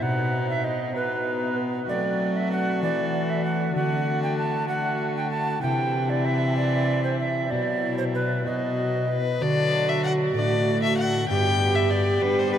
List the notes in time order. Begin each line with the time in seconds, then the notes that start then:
0.00 B2 B3 D#4 F#4 F#5
0.50 E5
0.64 D#5
0.92 B3 D#4 F#4
0.96 B4
1.85 F#3 A3 C4 F#4 A4 D5
2.37 E5
2.52 F#5
2.82 E3 D5
3.29 E5
3.45 F#5
3.71 D3 A3 D4 F#4 A4
3.75 D3 F#4 F#5
4.23 G5
4.38 A5
4.68 A3 F#4 F#5
5.17 G5
5.31 A5
5.59 C3 E3 E4 G5
5.63 E4
6.10 D5
6.25 E5
6.57 D5
7.04 C5
7.19 E5
7.48 B2 F#3 B3 E4 F#4 D5
7.98 C5
8.15 B4
8.43 B2 F#3 B3 F#4 D#5
9.09 B4
9.40 D3 F#3 F#4 D5
9.89 E5
10.04 F#5
10.33 A2 A3 F#4 D5
10.39 D4
10.83 E5
10.97 F#5
11.29 G2 B3 G4 G5
11.75 E5
11.90 D5
12.21 G3 B3 D4 G4 B4
12.38 C5
12.53 B4